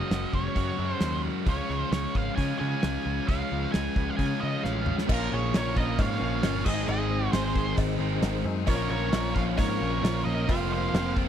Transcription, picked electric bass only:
0.10 0.24 F#1 medium
0.33 0.47 F#1 medium
0.56 0.70 F#2 medium
0.79 0.93 F#2 medium
1.01 1.29 D#2 medium
1.46 1.60 C#2 medium
1.69 1.83 C#2 medium
1.92 2.06 C#2 medium
2.15 2.29 G#1 medium
2.38 2.51 C#3 medium
2.61 2.74 C#3 medium
2.83 2.97 C#2 medium
3.06 3.19 C#2 medium
3.28 3.42 C#2 medium
3.52 3.65 C#2 medium
3.75 3.88 C#2 medium
3.96 4.10 C#2 medium
4.19 4.32 C#3 medium
4.43 4.56 C#3 medium
4.65 4.92 A1 medium
5.09 5.28 A#1 loud
5.33 5.51 A#1 medium
5.54 5.74 A#1 medium
5.76 5.96 A#1 medium
5.99 6.18 G#2 loud
6.21 6.41 A#1 medium
6.43 6.63 G1 medium
6.66 6.86 G#1 loud
6.88 7.27 G#1 medium
7.33 7.72 G#1 medium
7.78 7.98 G#1 loud
8.00 8.20 G#1 medium
8.22 8.42 G#1 medium
8.45 8.65 F#2 loud
8.67 8.88 A#1 loud
8.90 9.10 A#1 medium
9.12 9.32 A#1 loud
9.36 9.56 A#1 medium
9.58 9.78 G#2 loud
9.81 10.01 A#1 medium
10.03 10.23 A#1 loud
10.26 10.46 A#1 loud
10.49 10.88 F1 loud
10.94 11.28 F1 loud

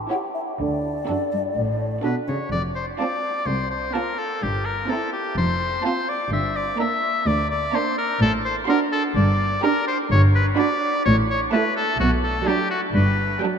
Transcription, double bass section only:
0.59 0.97 D2 soft
1.56 1.93 A1 soft
2.52 2.89 F1 soft
4.42 4.79 G1 medium
5.37 5.75 F1 medium
6.32 6.69 G1 medium
8.21 8.58 A1 medium
9.16 9.53 G1 medium
10.10 10.48 G1 medium
11.05 11.42 A1 medium
11.99 12.37 B1 medium
12.94 13.31 G1 medium

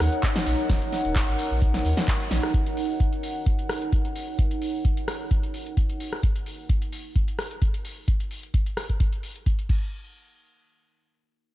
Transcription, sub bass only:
0.00 0.08 D#2 loud
0.46 0.55 A#1 loud
0.69 0.78 D#1 medium
1.05 1.20 D#1 loud
1.28 1.35 G#1 loud
1.51 1.79 A#1 medium
1.85 1.93 D#2 loud
2.31 2.39 A#1 loud

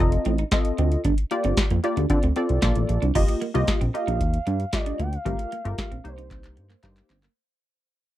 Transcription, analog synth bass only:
0.00 0.17 F1 loud
0.26 0.44 A1 loud
0.79 0.97 D2 loud
1.05 1.14 G1 loud
1.45 1.54 G1 loud
1.71 1.80 F2 medium
1.97 2.06 D2 loud
2.10 2.19 D3 loud
2.24 2.33 D2 medium
2.50 2.59 C2 medium
2.63 2.72 A#1 medium
2.76 2.85 A1 medium
2.90 2.98 A#1 loud
3.03 3.12 C2 medium
3.16 3.25 F1 loud
3.55 3.64 C2 medium
3.81 3.90 A#1 medium
4.08 4.22 A#1 loud
4.21 4.39 D#2 loud
4.47 4.65 G2 loud
4.99 5.18 D2 loud
5.26 5.35 G1 loud
5.65 5.74 G1 loud
5.92 6.01 A#1 medium
6.05 6.59 C2 loud
6.57 6.76 G2 loud
6.84 7.02 G2 medium
7.10 7.28 G1 loud

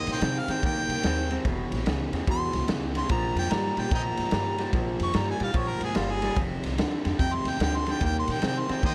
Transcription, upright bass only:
0.07 0.19 A#2 medium
0.22 0.43 C3 medium
0.48 0.60 D#3 medium
0.63 0.84 D#3 medium
0.89 1.01 C#3 medium
1.04 1.36 D#2 medium
1.45 1.66 E1 medium
1.71 1.83 A#1 medium
1.86 2.07 C#2 medium
2.12 2.24 E2 medium
2.28 2.48 E2 loud
2.53 2.65 C#2 medium
2.67 3.00 C#2 loud
3.10 3.30 A#1 medium
3.35 3.47 F2 medium
3.51 3.71 G2 loud
3.78 3.89 A#2 medium
3.91 4.12 A#2 loud
4.19 4.30 G#2 medium
4.32 4.64 G2 loud
4.73 4.94 A#1 medium
5.00 5.11 F2 medium
5.14 5.35 G2 medium
5.40 5.52 A#2 medium
5.54 5.75 A#2 loud
5.80 5.92 G#2 medium
5.96 6.28 G1 medium
6.36 6.57 F1 loud
6.65 6.76 C2 medium
6.78 6.99 D2 medium
7.05 7.17 F2 medium
7.19 7.40 F2 loud
7.45 7.56 D#2 medium
7.60 7.92 D2 loud
8.02 8.22 D#2 loud
8.28 8.39 A#2 medium
8.43 8.63 C3 medium
8.70 8.81 D#3 medium
8.83 8.95 D#3 loud

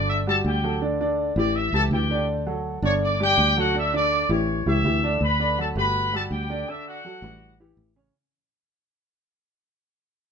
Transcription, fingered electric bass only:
0.00 0.41 G1 loud
0.45 1.31 D2 loud
1.36 1.70 A1 loud
1.73 1.90 C#2 medium
1.91 2.77 D2 loud
2.82 3.34 G1 loud
3.38 4.24 D2 loud
4.29 4.64 A1 loud
4.66 4.83 C#2 medium
4.84 5.17 D2 loud
5.21 5.72 D2 loud
5.76 6.27 G1 loud
6.31 6.63 D2 loud
7.22 7.74 A1 loud
7.77 8.10 A1 loud

